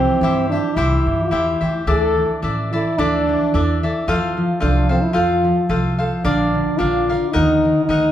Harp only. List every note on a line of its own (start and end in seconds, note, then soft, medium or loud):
0.00 0.21 E3 medium
0.23 0.50 E3 medium
0.51 0.76 E3 medium
0.77 1.05 E3 medium
1.07 1.31 E3 medium
1.32 1.61 E3 medium
1.62 1.86 E3 medium
1.87 2.16 E3 medium
2.17 2.42 E3 medium
2.43 2.71 E3 medium
2.73 2.98 E3 medium
2.99 3.28 E3 medium
3.29 3.53 E3 medium
3.54 3.82 E3 medium
3.83 4.12 E3 medium
4.08 4.36 F3 medium
4.37 4.61 F3 medium
4.62 4.89 F3 medium
4.90 5.14 F3 medium
5.15 5.43 F3 medium
5.44 5.68 F3 medium
5.70 5.98 F3 medium
5.99 6.29 F3 medium
6.25 6.54 D3 medium
6.55 6.79 D3 medium
6.81 7.08 D3 medium
7.09 7.39 D3 medium
7.35 7.64 D#3 loud
7.65 7.89 D#3 medium
7.90 8.12 D#3 medium